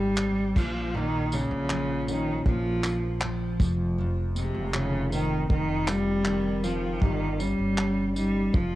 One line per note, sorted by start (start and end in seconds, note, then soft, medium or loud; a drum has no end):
0.00 0.52 G#1 loud
0.00 0.58 G3 loud
0.00 0.17 C4 medium
0.00 0.64 D#4 medium
0.00 0.64 G4 medium
0.17 0.64 C4 medium
0.17 clap loud
0.56 1.47 A#1 loud
0.56 0.93 A#2 medium
0.56 0.96 F3 loud
0.56 kick loud
0.56 tambourine medium
0.56 crash medium
0.94 2.45 A#2 medium
0.94 1.35 D#3 loud
1.32 2.12 C#3 loud
1.32 4.36 G#3 medium
1.32 tambourine medium
1.51 2.42 A#1 loud
1.70 3.22 F3 medium
1.70 clap loud
2.08 2.47 D#3 loud
2.08 3.68 C#4 medium
2.08 tambourine medium
2.46 3.56 A#1 loud
2.46 3.60 A#2 medium
2.46 3.19 F3 medium
2.46 kick loud
2.84 4.77 F4 medium
2.84 clap loud
2.84 tambourine medium
3.21 4.74 F3 medium
3.21 clap loud
3.60 4.51 F1 loud
3.60 3.97 F2 medium
3.60 kick loud
3.60 tambourine medium
3.98 5.49 F2 medium
4.36 4.76 C3 loud
4.36 7.10 G#3 medium
4.36 tambourine medium
4.54 5.46 F1 loud
4.74 5.12 C#3 loud
4.74 6.25 D#3 medium
4.74 clap loud
5.12 5.47 D#3 loud
5.12 6.63 C4 medium
5.12 tambourine medium
5.50 6.98 F1 loud
5.50 7.10 F2 medium
5.50 5.89 D#3 loud
5.50 kick loud
5.87 6.65 G3 loud
5.87 7.10 F4 medium
5.87 clap loud
5.87 tambourine medium
6.25 7.02 D#3 medium
6.25 clap loud
6.63 7.03 F3 loud
6.63 7.10 C4 medium
6.63 tambourine medium
7.01 7.55 G1 loud
7.01 7.41 D#3 loud
7.01 8.62 G3 medium
7.01 kick loud
7.40 8.15 G3 loud
7.40 7.77 C#4 medium
7.40 tambourine medium
7.59 8.50 G1 medium
7.78 8.62 C#4 medium
7.78 clap loud
8.16 8.55 G3 loud
8.16 8.62 D#4 medium
8.16 tambourine medium
8.54 8.75 F1 loud
8.54 8.75 F2 medium
8.54 8.75 F3 loud
8.54 kick loud